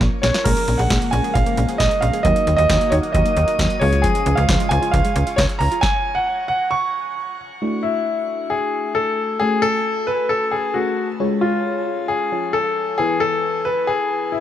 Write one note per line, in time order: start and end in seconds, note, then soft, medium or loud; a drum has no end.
0.00 0.09 A#1 loud
0.00 0.10 F3 medium
0.00 0.44 A#3 medium
0.00 0.44 C#4 medium
0.00 0.46 F4 medium
0.00 0.46 A#4 medium
0.00 kick loud
0.00 snare medium
0.22 0.32 A#1 loud
0.22 0.32 C#4 medium
0.22 0.46 C#5 medium
0.22 snare medium
0.34 0.43 F4 medium
0.34 snare medium
0.44 0.54 A#1 loud
0.44 2.23 C#3 medium
0.44 2.21 F3 medium
0.44 2.23 F3 medium
0.44 0.55 G#3 medium
0.44 2.23 G#3 medium
0.44 2.21 A#3 medium
0.44 2.23 A#3 medium
0.44 2.21 C#4 medium
0.44 2.21 G#4 medium
0.44 0.79 A#4 medium
0.44 kick loud
0.44 closed hi-hat medium
0.44 crash medium
0.57 0.66 A#3 medium
0.57 closed hi-hat medium
0.68 0.76 A#1 medium
0.68 0.77 C#4 medium
0.68 closed hi-hat medium
0.78 0.88 A#1 loud
0.78 0.88 G#4 medium
0.78 1.13 F#5 medium
0.78 closed hi-hat medium
0.90 0.99 A#1 loud
0.90 0.99 G#3 medium
0.90 kick loud
0.90 snare loud
0.90 closed hi-hat medium
1.02 1.11 A#3 medium
1.02 closed hi-hat medium
1.11 1.21 A#1 loud
1.11 1.22 C#4 medium
1.11 1.35 G#5 medium
1.11 closed hi-hat medium
1.24 1.33 G#4 medium
1.24 closed hi-hat soft
1.34 1.44 A#1 medium
1.34 1.44 G#3 medium
1.34 1.81 F5 medium
1.34 kick loud
1.34 closed hi-hat medium
1.46 1.55 A#3 medium
1.46 closed hi-hat medium
1.57 1.66 A#1 medium
1.57 1.66 C#4 medium
1.57 closed hi-hat medium
1.69 1.78 G#4 medium
1.69 closed hi-hat medium
1.78 1.88 A#1 loud
1.78 1.89 G#3 medium
1.78 2.02 D#5 medium
1.78 kick loud
1.78 snare loud
1.78 closed hi-hat medium
1.91 closed hi-hat soft
2.01 2.11 A#1 loud
2.01 2.11 C#4 medium
2.01 2.22 F5 medium
2.01 closed hi-hat medium
2.13 2.22 G#4 medium
2.13 closed hi-hat medium
2.23 2.33 D#2 loud
2.23 3.80 D#3 medium
2.23 3.80 F#3 medium
2.23 2.34 F#3 loud
2.23 3.80 A#3 medium
2.23 3.78 A#3 medium
2.23 3.78 D#4 medium
2.23 3.80 F#4 medium
2.23 3.78 F#4 medium
2.23 3.78 A#4 medium
2.23 2.55 D#5 loud
2.23 kick loud
2.23 closed hi-hat medium
2.36 2.45 A#3 medium
2.36 closed hi-hat medium
2.47 2.56 D#2 medium
2.47 2.56 D#4 medium
2.47 closed hi-hat medium
2.57 2.67 D#2 loud
2.57 2.67 F#4 medium
2.57 2.92 D#5 loud
2.57 closed hi-hat medium
2.69 2.78 D#2 loud
2.69 2.78 F#3 medium
2.69 kick loud
2.69 snare loud
2.69 closed hi-hat medium
2.81 2.90 A#3 medium
2.81 closed hi-hat medium
2.90 3.00 D#2 loud
2.90 3.01 D#4 medium
2.90 2.95 C#5 medium
2.90 closed hi-hat medium
3.03 3.12 F#4 medium
3.03 closed hi-hat soft
3.13 3.23 D#2 loud
3.13 3.23 F#3 medium
3.13 3.83 D#5 medium
3.13 kick loud
3.13 closed hi-hat medium
3.25 3.34 A#3 medium
3.25 closed hi-hat medium
3.37 3.45 D#2 loud
3.37 3.46 D#4 medium
3.37 closed hi-hat medium
3.48 3.57 F#4 medium
3.48 closed hi-hat medium
3.59 3.68 D#2 loud
3.59 3.68 F#3 medium
3.59 kick loud
3.59 snare loud
3.59 closed hi-hat medium
3.70 closed hi-hat medium
3.80 4.07 C#2 loud
3.80 5.81 C#3 medium
3.80 5.81 F3 medium
3.80 5.79 G#3 medium
3.80 5.81 G#3 medium
3.80 3.90 C#4 medium
3.80 5.79 C#4 medium
3.80 5.79 F4 medium
3.80 5.81 F4 medium
3.80 5.79 G#4 medium
3.80 4.04 C#5 medium
3.80 open hi-hat medium
3.93 4.02 F4 medium
3.93 closed hi-hat medium
4.02 4.13 F3 loud
4.02 4.37 G#4 loud
4.02 kick loud
4.02 closed hi-hat medium
4.15 4.24 G#3 medium
4.15 closed hi-hat medium
4.26 4.35 C#2 loud
4.26 4.35 C#4 medium
4.26 closed hi-hat medium
4.35 4.46 C#2 loud
4.35 4.46 F4 medium
4.35 4.71 F5 medium
4.35 closed hi-hat medium
4.49 4.57 C#2 loud
4.49 4.58 F3 medium
4.49 kick loud
4.49 snare loud
4.49 closed hi-hat medium
4.60 4.69 G#3 medium
4.60 closed hi-hat medium
4.69 4.80 C#2 loud
4.69 4.80 C#4 medium
4.69 4.91 G#5 medium
4.69 closed hi-hat medium
4.82 4.91 F4 medium
4.82 closed hi-hat soft
4.91 5.02 C#2 loud
4.91 5.02 F3 medium
4.91 5.39 F5 loud
4.91 kick loud
4.91 closed hi-hat medium
5.04 5.13 G#3 medium
5.04 closed hi-hat medium
5.16 5.24 C#2 loud
5.16 5.25 C#4 medium
5.16 closed hi-hat medium
5.27 5.36 F4 medium
5.27 closed hi-hat medium
5.36 5.47 C#2 loud
5.36 5.47 F3 medium
5.36 5.42 C#5 loud
5.36 kick loud
5.36 snare loud
5.36 closed hi-hat medium
5.49 closed hi-hat medium
5.59 5.69 C#2 medium
5.59 5.69 C#4 medium
5.59 5.83 A#5 loud
5.59 open hi-hat medium
5.72 5.81 F4 medium
5.72 closed hi-hat medium
5.81 6.17 G#5 loud
5.81 kick loud
5.81 snare medium
6.15 6.47 F#5 loud
6.48 6.72 F#5 loud
6.71 7.35 C#6 loud
7.62 9.37 A3 medium
7.62 9.37 D4 medium
7.62 9.37 E4 medium
7.62 9.37 F#4 medium
7.83 8.53 E4 medium
8.50 8.92 G#4 medium
8.95 9.42 A4 loud
9.40 10.73 A3 medium
9.40 10.73 C#4 medium
9.40 10.73 F#4 medium
9.40 9.63 G#4 loud
9.40 10.73 A4 medium
9.40 10.73 G#5 medium
9.62 10.09 A4 loud
10.07 10.28 B4 loud
10.29 10.53 A4 loud
10.51 10.75 G#4 loud
10.74 11.20 A3 medium
10.74 11.19 C#4 soft
10.74 11.06 F#4 medium
10.74 11.20 F#4 soft
10.74 11.19 G#4 soft
10.74 11.20 A4 medium
11.20 12.30 G#3 medium
11.20 12.30 C#4 medium
11.20 12.30 F4 medium
11.20 12.30 G#4 medium
11.20 12.30 C#5 medium
11.41 12.05 F4 medium
12.08 12.55 G#4 loud
12.32 12.99 F3 medium
12.32 12.99 C#4 soft
12.32 12.99 F4 soft
12.32 12.99 C#5 medium
12.32 12.98 G#5 soft
12.53 13.00 A4 loud
12.98 14.40 E3 medium
12.98 14.40 B3 medium
12.98 14.40 E4 medium
12.98 13.19 G#4 loud
12.98 14.40 B4 medium
12.98 14.40 G#5 medium
13.20 13.67 A4 loud
13.65 13.89 B4 loud
13.87 14.34 G#4 loud
14.32 14.40 E4 medium